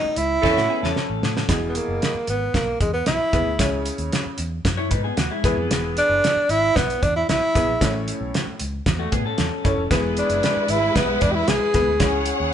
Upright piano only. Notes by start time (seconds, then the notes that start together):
Already playing: A2
0.43 C#4 E4 A4 C5
0.50 C#5
1.49 B2 E3 E4 G#4
3.33 B3 E4 G#4 B4
3.60 C#3 C#4 E4 G#4 C#5
5.44 E3 B3 E4 G#4 B4
7.55 B3 E4 G#4 B4
7.81 A2 C#4 E4 A4 C#5
9.64 C#4 E4 A4 C#5
9.91 E3 B3 E4 G#4 B4
11.74 B3 E4 G#4 B4
12.00 C#3 C#4 E4 G#4 C#5